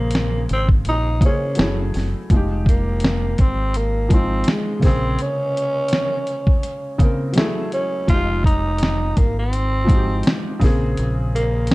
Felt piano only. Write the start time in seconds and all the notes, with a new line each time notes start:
Already playing: C#3 A#3 C4 G#4
1.20 C#3 A#3 C5
1.26 G#4
1.56 F#3 A3 E4
1.61 G#4
2.31 F3 G#3 D#4
2.36 G4
4.09 F3 G#3 D#4
4.14 F4
4.79 C3 A#3
4.83 C#3 G#4 C5
6.98 C#3 A#3 C4
7.04 A#4
7.33 F#3 G#3
7.37 E4 G#4
7.41 A3
8.07 F3 G#3 D#4
8.13 G4
9.85 F3 G#3 D#4
9.90 F#4
9.97 G4
10.59 C#3 A#3 C4
10.65 G#4